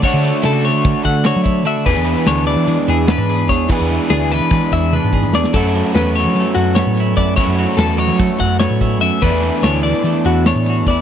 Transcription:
<<
  \new Staff \with { instrumentName = "Clean electric guitar" } { \time 9/8 \key e \mixolydian \tempo 4. = 98 cis''4 a'8 cis''4 fis''8 cis''4 e''8 | b'4 cis''8 d''4 gis'8 b'4 cis''8 | b'4 gis'8 b'4 e''8 b'4 d''8 | a'4 b'8 cis''4 fis'8 cis''4 d''8 |
cis''4 a'8 cis''4 fis''8 cis''4 e''8 | b'4 cis''8 d''4 fis'8 cis''4 d''8 | }
  \new Staff \with { instrumentName = "Overdriven electric guitar" } { \time 9/8 \key e \mixolydian <d a d' fis'>1~ <d a d' fis'>8 | <e b d' gis'>1~ <e b d' gis'>8 | <e b d' gis'>1~ <e b d' gis'>8 | <fis a cis' fis'>1~ <fis a cis' fis'>8 |
<fis a cis' fis'>1~ <fis a cis' fis'>8 | <e b d' gis'>1~ <e b d' gis'>8 | }
  \new Staff \with { instrumentName = "Clean electric guitar" } { \time 9/8 \key e \mixolydian << { fis'4 e'16 fis'4.~ fis'16 fis'8 e'8 fis'8 | gis'4 d'4 gis4 b16 d'16 gis'8 gis'8 | gis'4 d'4 gis4 d'8 gis'8 gis'8 | e'4 b4 a4 b8 e'8 e'8 |
e'4 b4 a4 b8 e'8 e'8 | <e a d' e'>4 d'4 a4 d'8 fis'8 e'8 | } \\ { d8 a4 a4 a4. d8 | e,8 e4 e4 e4. e,8 | e,8 e4 e4 e4. e,8 | fis,8 fis4 fis4 fis4. fis,8 |
fis,8 fis4 fis4 fis4. fis,8 | e,8 e4 e4 e4. e,8 | } >> }
  \new Staff \with { instrumentName = "Picked electric bass" } { \clef bass \time 9/8 \key e \mixolydian r16 d8 r16 cis8. d16 d16 r16 d8. fis8. d16 r16 | e,16 e,8 r16 d,8. e16 e16 r16 e,8. gis,8. e,8 | r16 e,8 r16 d,8. e16 e16 r16 e,8. gis,8. e,16 r16 | fis,16 fis,8 r16 e,8. fis16 fis16 r16 fis,8. a,8. fis,8 |
r16 fis,8 r16 e,8. fis16 fis16 r16 fis,8. a,8. fis,16 r16 | e,16 e,8 r16 d,8. e16 e16 r16 e,8. a,8. e,8 | }
  \new DrumStaff \with { instrumentName = "Drums" } \drummode { \time 9/8 <bd cymr>8 <cymr sn>8 <cymr sn>8 cymr8 <bd cymr>8 <bd cymr>8 <cymr sn>8 <bd cymr>8 cymr8 | <cymc bd>8 cymr8 <cymr sn>8 cymr8 cymr8 <cymr sn>8 <cymr sn>8 <cymr sn>8 <bd cymr>8 | <bd cymr>8 <cymr sn>8 <cymr sn>8 cymr8 <bd cymr sn>8 <bd cymr>8 tommh8 bd16 toml16 sn16 sn16 | <cymc bd>8 cymr8 <cymr sn>8 cymr8 cymr8 cymr8 <cymr sn>8 <cymr sn>8 <bd cymr>8 |
<bd cymr>8 cymr8 <cymr sn>8 <cymr sn>8 <bd cymr>8 <bd cymr>8 <cymr sn>8 <bd cymr sn>8 <cymr sn>8 | <cymc bd>8 <cymr sn>8 <cymr sn>8 cymr8 cymr8 cymr8 <cymr sn>8 <cymr sn>8 <bd cymr>8 | }
>>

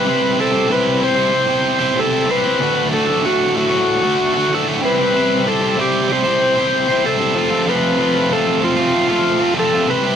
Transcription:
<<
  \new Staff \with { instrumentName = "Tonewheel organ" } { \time 4/4 \key c \lydian \tempo 4 = 95 b'8 a'8 b'8 c''4. a'8 b'8~ | b'8 a'8 fis'8 fis'4. a'8 b'8~ | b'8 a'8 g'8 c''4. a'4 | b'4 a'8 f'4. a'8 b'8 | }
  \new Staff \with { instrumentName = "Distorted electric guitar" } { \time 4/4 \key c \lydian <c g c' e' g' c''>8 <c' e' g' c''>16 <c' e' g' c''>16 <c g c' e' g' c''>8 <c' e' g' c''>16 <c' e' g' c''>8 <c' e' g' c''>8 <c' e' g' c''>16 <c g c' e' g' c''>16 <c' e' g' c''>16 <c' e' g' c''>16 <c' e' g' c''>16 | <d, a, d a fis'>8 <a, d a fis'>16 <d a fis'>16 <d, a, d a fis'>8 <a, d a fis'>16 <d a fis'>8 <d a fis'>8 <d a fis'>16 <d, a, d a fis'>16 <d a fis'>16 <c g c' e' g' c''>16 <c' e' g' c''>16 | <c g c' e' g' c''>8 <c' e' g' c''>16 <c' e' g' c''>16 <c g c' e' g' c''>8 <c' e' g' c''>16 <c' e' g' c''>8 <c' e' g' c''>8 <c' e' g' c''>16 <c g c' e' g' c''>16 <c' e' g' c''>16 <f, c f a c' f'>16 <f a c' f'>16 | <f, c f a c' f'>8 <f a c' f'>16 <f a c' f'>16 <f, c f a c' f'>8 <f a c' f'>16 <f a c' f'>8 <f a c' f'>8 <f a c' f'>16 <f, c f a c' f'>16 <f a c' f'>16 <c g c' e' g' c''>16 <c' e' g' c''>16 | }
>>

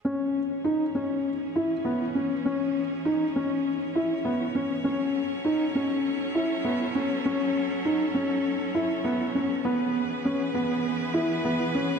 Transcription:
<<
  \new Staff \with { instrumentName = "Felt piano" } { \time 4/4 \key cis \minor \tempo 4 = 100 cis'4 dis'8 cis'4 e'8 b8 cis'8 | cis'4 dis'8 cis'4 e'8 b8 cis'8 | cis'4 dis'8 cis'4 e'8 b8 cis'8 | cis'4 dis'8 cis'4 e'8 b8 cis'8 |
b4 cis'8 b4 e'8 b8 cis'8 | }
  \new Staff \with { instrumentName = "String quartet" } { \time 4/4 \key cis \minor << { cis''1~ | cis''1~ | cis''1~ | cis''1 |
b'1 | } \\ { <e cis' gis'>1~ | <e cis' gis'>1 | <fis cis' a'>1~ | <fis cis' a'>1 |
<e b gis'>1 | } >> }
>>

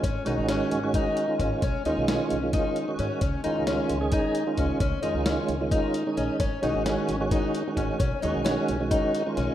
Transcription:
<<
  \new Staff \with { instrumentName = "Twelve-string acoustic guitar" } { \time 7/8 \key des \mixolydian \tempo 4 = 132 des'8 ees'8 des'4 ees'4 des'8 | des'8 ees'8 des'4 ees'4 des'8 | des'8 ees'8 des'4 ees'4 des'8 | des'8 ees'8 des'4 ees'4 des'8 |
des'8 ees'8 des'4 ees'4 des'8 | des'8 ees'8 des'4 ees'4 des'8 | }
  \new Staff \with { instrumentName = "Tonewheel organ" } { \time 7/8 \key des \mixolydian r8 <ees aes des' ges'>4~ <ees aes des' ges'>16 <ees aes des' ges'>4 <ees aes des' f'>8. | r8 <ees aes des' f'>4~ <ees aes des' f'>16 <ees aes des' f'>4 <ees aes des' ges'>8. | r8 <ees aes des' f'>4~ <ees aes des' f'>16 <ees aes des' aes'>4 <ees aes des' f'>8. | r8 <ees aes des' f'>4~ <ees aes des' f'>16 <ees aes des' f'>4 <ees aes des' ees'>8. |
r8 <ees aes des' ges'>4~ <ees aes des' ges'>16 <ees aes des' ges'>4 <ees aes des' ges'>8. | r8 <ees aes des' ges'>4~ <ees aes des' ges'>16 <ees aes des' ges'>4 <ees aes des' f'>8. | }
  \new Staff \with { instrumentName = "Upright bass" } { \clef bass \time 7/8 \key des \mixolydian aes,,16 r16 ces,16 aes,,8 r16 aes,,8 r4 aes,,16 r16 | ces,16 r16 ees,16 ces,8 r16 ces,8 r4 aes,16 r16 | des,16 r16 f,16 des,8 r16 des,8 r4 des,16 r16 | des,16 r16 f,16 des,8 r16 des,8 r4 bes,,16 r16 |
aes,,16 r16 ces,16 aes,,8 r16 aes,,8 r4 aes,,16 r16 | ces,16 r16 ees,16 ces,8 r16 ces,8 r4 ces,16 r16 | }
  \new DrumStaff \with { instrumentName = "Drums" } \drummode { \time 7/8 <hh bd>8 hh8 <hh sn>8 hh8 <hh bd>8 hh8 <hh bd>8 | <hh bd>8 hh8 <hh sn>8 hh8 <hh bd>8 hh8 hh8 | <hh bd>8 hh8 <hh sn>8 hh8 <hh bd>8 hh8 <hh bd>8 | <hh bd>8 hh8 <hh sn>8 hh8 <hh bd>8 hh8 hh8 |
<hh bd>8 <hh sn>8 <hh sn>8 <hh sn>8 <hh bd>8 hh8 <hh bd>8 | <hh bd>8 hh8 <hh sn>8 hh8 <hh bd>8 <hh sn>8 <hh sn>8 | }
>>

